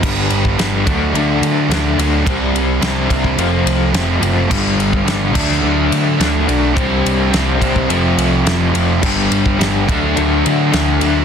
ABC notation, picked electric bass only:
X:1
M:4/4
L:1/8
Q:1/4=106
K:Gmix
V:1 name="Picked electric bass" clef=bass
G,,, G,,, G,,, D,, D,, D, D,, D,, | C,, C,, C,, C,, F,,, C,, F,,, ^F,,, | G,,, G,,, G,,, D,, D,, D, D,, B,,, | C,, C,, C,, C,, F,,, C,, F,,, F,,, |
G,,, G,,, G,,, D,, D,, D, D,, D,, |]